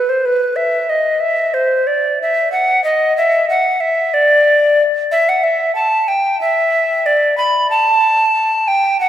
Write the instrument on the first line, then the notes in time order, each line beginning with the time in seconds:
recorder
Already playing: B4
0.09 C5
0.25 B4
0.56 E5
0.90 D#5
1.20 E5
1.54 C5
1.87 D5
2.22 E5
2.52 F#5
2.84 D#5
3.17 E5
3.50 F#5
3.80 E5
4.14 D5
5.12 E5
5.29 F#5
5.44 E5
5.75 A5
6.08 G5
6.41 E5
7.06 D5
7.38 B5
7.70 A5
8.68 G5
9.00 F#5